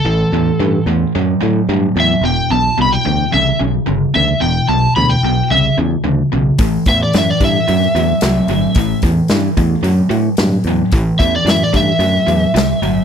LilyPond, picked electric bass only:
\new Staff \with { instrumentName = "Picked electric bass" } { \clef bass \time 4/4 \key a \dorian \tempo 4 = 111 a,,8 e,8 g,8 e,8 fis,8 a,8 g,8 e,8 | e,,8 b,,8 c,8 d,8 c,8 b,,8 g,,8 d,8 | e,,8 b,,8 d,8 b,,8 c,8 e,8 d,8 b,,8 | a,,8 e,8 fis,8 g,8 fis,8 e,8 c,8 g,,8 |
a,,8 e,8 g,8 e,8 fis,8 a,8 g,8 e,8 | a,,8 e,8 fis,8 g,8 fis,8 e,8 c,8 g,,8 | }